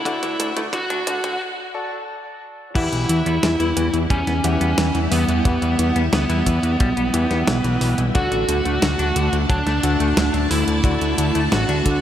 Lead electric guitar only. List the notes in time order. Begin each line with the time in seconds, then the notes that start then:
Already playing: E4
0.73 F#4
2.76 E4
4.10 C#4
5.12 B3
6.13 B3
8.15 F#4
9.50 D4
10.51 E4
11.52 F#4